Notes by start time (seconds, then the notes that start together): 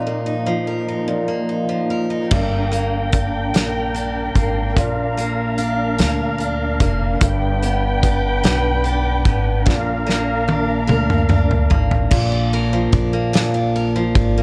Already playing: A#2 F3 D#4
0.07 A#3
0.26 D#4
0.46 F3
0.67 A#4
0.88 D#4
1.08 A#2
1.28 A#3
1.49 D#4
1.69 F3
1.90 A#4
2.10 D#4
2.31 G1 G2 D4 A#4 G5, kick, crash
2.72 A#3, closed hi-hat
3.13 D4, kick, closed hi-hat
3.54 A#1 A#4, snare, closed hi-hat
3.94 D4, closed hi-hat
4.35 G#1 A#3, kick, closed hi-hat
4.76 A#1 A#2 F5, kick, closed hi-hat
5.17 A#3, closed hi-hat
5.58 D4, closed hi-hat
5.99 D2 A#4, snare, closed hi-hat
6.38 D4, closed hi-hat
6.80 F1 A#3, kick, closed hi-hat
7.20 G1 G2 B4 G5, kick, closed hi-hat
7.62 B3, closed hi-hat
8.03 D4, kick, closed hi-hat
8.44 B1 B4, snare, closed hi-hat
8.84 D4, closed hi-hat
9.25 G#1 B3, kick, closed hi-hat
9.66 A#1 A#2 D4 A#4 F5, kick, snare
10.07 A#3, snare
10.48 D4, high tom
10.87 D2 A#4, mid tom
11.10 mid tom
11.29 D4, mid tom
11.51 floor tom
11.70 G#1 A#3, floor tom
11.91 floor tom
12.11 A#1 A#2, kick, crash
12.32 D4
12.53 A#4, ride
12.73 F3
12.92 A#1 D4, kick, ride
13.13 A#3
13.33 A#2, snare, ride
13.54 D4
13.76 A#4, ride
13.96 F3
14.15 G#1 D4, kick, ride
14.38 A#3